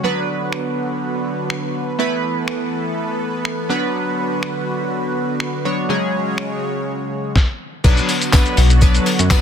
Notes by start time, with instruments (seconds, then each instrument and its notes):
Already playing: supersaw synth F#4
0.03 supersaw synth D3 B3 B4, synth keys F#3 B3 D4 B4
0.53 finger snap
1.50 finger snap
1.99 supersaw synth E3 B3 A4, synth keys A3 B3 E4 B4
2.48 finger snap
3.45 finger snap
3.69 supersaw synth D3 F#4, synth keys F#3 B3 D4 B4
4.43 finger snap
5.40 finger snap
5.65 synth keys F#3 B3 D4 C#5
5.89 synth keys C#3 F#3 G#3 C#4 G#4, supersaw synth C#3 G#3 C#5
6.38 finger snap
7.36 kick, snare
7.84 analog synth bass B1, supersaw synth D3 F#3 B3 F#4, synth keys F#3 B3 D4 B4, kick, crash, tambourine, shaker
7.97 closed hi-hat, shaker
8.08 open hi-hat, tambourine, shaker
8.22 closed hi-hat, tambourine, shaker
8.33 synth keys F#3 B3 D4 B4, kick, snare, clap, tambourine, shaker
8.46 closed hi-hat, shaker
8.57 analog synth bass B1, open hi-hat, tambourine, shaker
8.70 closed hi-hat, shaker
8.81 synth keys F#3 B3 D4 B4, kick, tambourine, shaker
8.95 closed hi-hat, shaker
9.06 open hi-hat, tambourine, shaker
9.19 analog synth bass F#2, closed hi-hat, shaker
9.30 synth keys F#3 B3 D4 B4, kick, snare, clap, tambourine, shaker